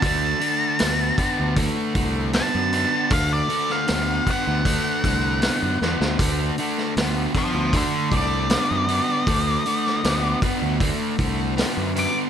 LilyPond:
<<
  \new Staff \with { instrumentName = "Lead electric guitar" } { \time 4/4 \key d \mixolydian \tempo 4 = 78 a''2 r4 a''4 | f''16 d''8 f''8. fis''2~ fis''8~ | fis''8 r4 <c'' f''>8 <a' d''>8 d''4.~ | d''4. r2 d'''16 r16 | }
  \new Staff \with { instrumentName = "Overdriven electric guitar" } { \clef bass \time 4/4 \key d \mixolydian <d a>8 <d a>8 <d b>8 <d b>8 <d a>8 <d a>8 <d b>8 <d b>8 | <d a>8 <d a>8 <d b>8 <d b>8 <d a>8 <d a>8 <d b>8 <d b>8 | <d a>8 <d a>8 <d b>8 <d b>8 <d a>8 <d a>8 <d b>8 <d b>8 | <d a>8 <d a>8 <d b>8 <d b>8 <d a>8 <d a>8 <d b>8 <d b>8 | }
  \new Staff \with { instrumentName = "Fingered electric bass" } { \clef bass \time 4/4 \key d \mixolydian d,8 r8 d,8 r16 d,8 r16 c,8. fis,8 r16 | d,8 r8 d,8 r16 d,8 r16 c,8. fis,16 e,16 d,16 | d,8 r8 d,8 r16 d,8 r16 c,8. fis,8 r16 | d,8 r8 d,8 r16 d,8 r16 c,8. fis,8 r16 | }
  \new DrumStaff \with { instrumentName = "Drums" } \drummode { \time 4/4 <hho bd>8 hho8 <hho sn>8 <hho bd>8 <hho bd>8 <hho bd>8 <hho sn>8 hho8 | <hho bd>8 hho16 sn16 <hho sn>8 <hho bd>8 <hho bd>8 <hho bd>8 <hho sn>8 sn16 sn16 | <hho bd>8 hho16 sn16 <hho sn>8 <hho bd>8 <hho bd>8 <hho bd>8 <hho sn>8 hho8 | <hho bd>8 hho16 sn16 <hho sn>8 <hho bd>8 <hho bd>8 <hho bd>8 <hho sn>8 hho8 | }
>>